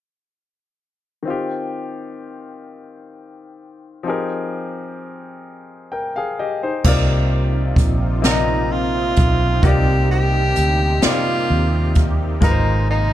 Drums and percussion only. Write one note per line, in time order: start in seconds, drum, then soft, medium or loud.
6.84 kick loud
6.84 crash loud
7.76 kick medium
7.76 closed hi-hat medium
8.24 snare loud
8.24 closed hi-hat medium
9.16 kick medium
9.16 closed hi-hat medium
9.63 kick loud
9.63 closed hi-hat medium
10.56 closed hi-hat medium
11.02 snare loud
11.02 closed hi-hat medium
11.95 kick medium
11.95 closed hi-hat medium
12.41 kick loud
12.41 closed hi-hat medium